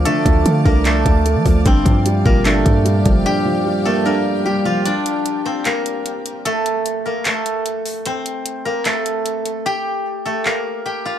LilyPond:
<<
  \new Staff \with { instrumentName = "Ambient pad" } { \time 4/4 \key d \minor \tempo 4 = 150 <d'' f'' a'' d'''>1 | <g' d'' f'' g''>1~ | <g' d'' f'' g''>1 | r1 |
r1 | r1 | r1 | }
  \new Staff \with { instrumentName = "Guzheng" } { \time 4/4 \key d \minor <a a'>4. <bes bes'>8 <a a'>2 | <c' c''>4. <bes bes'>8 <a a'>2 | <g' g''>4. <a a'>8 <bes bes'>4 <g' g''>8 <f' f''>8 | <d' d''>4. <c' c''>8 <bes bes'>2 |
<a a'>4. <bes bes'>8 <a a'>2 | <c' c''>4. <bes bes'>8 <a a'>2 | <g' g''>4. <a a'>8 <bes bes'>4 <g' g''>8 <f' f''>8 | }
  \new Staff \with { instrumentName = "Grand piano" } { \clef bass \time 4/4 \key d \minor <d f d''>8 f8 a8 d'8 d''4 a8 f8 | g,8 f8 g8 bes,8 d'4 g8 f8 | g,8 f8 g8 bes8 d'4 g8 f8 | r1 |
r1 | r1 | r1 | }
  \new Staff \with { instrumentName = "808-style bass" } { \clef bass \time 4/4 \key d \minor r8 d,8 d8 c,4 d,8. f16 d,8 | g,,8 g,4 g,,4 g,4 g,,8 | r1 | r1 |
r1 | r1 | r1 | }
  \new DrumStaff \with { instrumentName = "Drums" } \drummode { \time 4/4 hh8 <hh bd>8 hh8 bd8 <hc hh>8 <hh bd>8 hh8 <hho bd>8 | <hh bd>8 <hh bd>8 hh8 bd8 <hc hh>8 <hh bd>8 hh8 <hh bd>8 | r4 r4 r4 r4 | hh8 hh8 hh4 <hc hh>8 hh8 hh8 hh8 |
hh8 hh8 hh4 <hc hh>8 hh8 hh8 hho8 | hh8 hh8 hh4 <hc hh>8 hh8 hh8 hh8 | r4 r4 hc4 r4 | }
>>